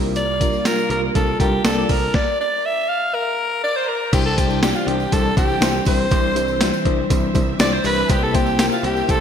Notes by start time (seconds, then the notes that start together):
Already playing: C2 C3 G3 A#3 D4 F4 A#4
0.16 D5, closed hi-hat, tambourine
0.41 G3 D4 F4 A#4, kick, closed hi-hat, tambourine
0.53 tambourine
0.65 G3 D4 F4 A#4, snare, closed hi-hat, tambourine
0.79 tambourine
0.90 C2 G3 D4 F4 A#4, closed hi-hat
1.15 C2 G3 D4 F4 A4 A#4, kick, closed hi-hat, tambourine
1.40 C2 G3 D4 F4 G4 A#4, kick, closed hi-hat, tambourine
1.65 C2 G3 A#3 D4 F4 G4 A4 A#4 D5, snare, closed hi-hat, tambourine
1.89 C2 G3 D4 F4 A#4, kick, open hi-hat, tambourine
2.14 D5, kick, snare
2.41 D5
2.66 E5
2.89 F5
3.14 A#4
3.63 D5 D6
3.76 C5 C6
3.88 A#4 A#5
4.13 C2 C3 E3 G3 C4 D4 E4 G4 C5 G5, kick, closed hi-hat, crash, tambourine
4.26 A4 A5
4.37 G3 D4 E4 G4 C5 G5, kick, closed hi-hat, tambourine
4.50 tambourine
4.62 G3 D4 E4 G4 D5 G5, snare, closed hi-hat, tambourine
4.76 F4 F5, tambourine
4.86 C2 G3 D4 E4 G4 C5 G5, closed hi-hat
5.00 tambourine
5.11 C2 G3 D4 E4 A4 C5 A5, kick, closed hi-hat, tambourine
5.36 C2 G3 D4 E4 G4 C5 G5, kick, closed hi-hat, tambourine
5.49 tambourine
5.61 C2 G3 D4 E4 C5, snare, closed hi-hat, tambourine
5.85 C2 G3 D4 E4 C5 C6, kick, open hi-hat, tambourine
6.11 C2 C3 G3 D4 E4 C5 E5, kick, closed hi-hat, tambourine
6.35 G3 D4 E4 C5, closed hi-hat, tambourine
6.48 tambourine
6.61 G3 D4 E4 C5, snare, closed hi-hat, tambourine
6.74 tambourine
6.84 C2 G3 D4 E4 C5, kick, closed hi-hat
7.10 C2 G3 D4 E4 C5, kick, closed hi-hat, tambourine
7.34 C2 G3 D4 E4 C5, kick, closed hi-hat, tambourine
7.59 C2 G3 D4 E4 C5 D5 D6, snare, closed hi-hat, tambourine
7.72 C5 C6
7.84 C2 G3 D4 E4 B4 C5 B5, open hi-hat, tambourine
7.96 tambourine
8.09 C2 C3 A#3 E4 G4 C5 G5, kick, closed hi-hat, tambourine
8.23 A4 A5
8.34 A#3 E4 G4 C5 G5, kick, closed hi-hat, tambourine
8.47 tambourine
8.59 A#3 E4 G4 A#4 G5, snare, closed hi-hat, tambourine
8.72 F4 F5, tambourine
8.83 C2 A#3 E4 G4 C5 G5, closed hi-hat
8.96 tambourine
9.08 C2 A#3 E4 G4 A4 C5 A5, kick, closed hi-hat, tambourine